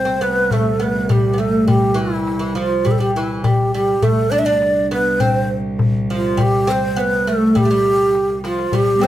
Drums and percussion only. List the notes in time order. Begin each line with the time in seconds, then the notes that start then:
0.22 darbuka tek
0.51 darbuka dum
1.10 darbuka dum
1.68 darbuka dum
2.27 darbuka tek
2.57 darbuka tek
2.86 darbuka dum
3.44 darbuka dum
4.02 darbuka dum
4.62 darbuka tek
4.92 darbuka tek
5.20 darbuka dum
5.79 darbuka dum
6.38 darbuka dum
6.98 darbuka tek
7.13 darbuka ka
7.27 darbuka tek
7.56 darbuka dum
7.85 darbuka ka
8.00 darbuka ka
8.15 darbuka tek
8.30 darbuka ka
8.44 darbuka tek
8.59 darbuka ka
8.72 darbuka dum